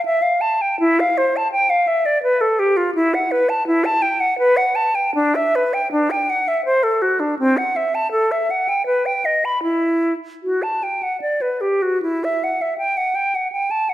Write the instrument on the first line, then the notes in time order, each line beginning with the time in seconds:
flute
0.05 E5
0.22 F5
0.41 A5
0.62 G5
0.80 E4
1.00 F5
1.18 C5
1.37 A5
1.52 G5
1.70 F5
1.87 E5
2.06 D5
2.23 B4
2.41 A4
2.59 G4
2.77 F4
2.95 E4
3.14 F#5
3.31 B4
3.49 A5
3.67 E4
3.85 A5
4.02 G5
4.20 F#5
4.39 B4
4.57 F#5
4.75 A5
4.95 G5
5.15 D4
5.35 E5
5.55 B4
5.74 G5
5.92 D4
6.11 G5
6.30 F#5
6.48 E5
6.65 C5
6.83 A4
7.02 F#4
7.20 D4
7.39 C4
7.57 F#5
7.76 E5
7.95 A5
8.12 A4
8.32 E5
8.50 F#5
8.69 G5
8.86 B4
9.06 G5
9.25 D#5
9.45 B5
9.63 E4
10.43 F#4
10.63 A5
10.83 G5
11.03 F#5
11.21 D5
11.41 B4
11.61 G4
11.82 F#4
12.02 E4
12.24 E5
12.44 F#5
12.62 E5
12.78 G5
12.97 F#5
13.15 G5
13.35 F#5
13.52 G5
13.71 A5
13.89 F#5